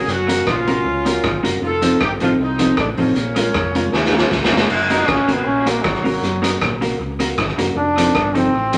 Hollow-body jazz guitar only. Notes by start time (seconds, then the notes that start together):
0.28 A#3 C#4 F#4 A#4
0.67 A#3 C#4 F#4 A#4
1.05 A#3 C#4 F#4 A#4
1.43 A#3 C#4 F#4 A#4
1.82 F3 C4 D#4 A4
2.21 F3 C4 D#4 A4
2.59 F3 C4 D#4 A4
2.97 F3 C4 D#4 A4
3.36 G#3 C#4 F4 A#4
3.75 G#3 C#4 F4 A#4
4.13 G#3 C#4 F4 A#4
4.52 G#3 C#4 F4 A#4
4.90 A#3 C#4 F#4 A#4
5.28 A#3 C#4 F#4 A#4
5.66 A#3 C#4 F#4 A#4
6.04 A#3 C#4 F#4 A#4
6.42 A#3 C#4 F#4 A#4
6.81 A#3 C#4 F#4 A#4
7.20 A#3 C#4 F#4 A#4
7.58 A#3 C#4 F#4 A#4
7.97 F3 C4 D#4 A4
8.35 F3 C4 D#4 A4
8.73 F3 C4 D#4 A4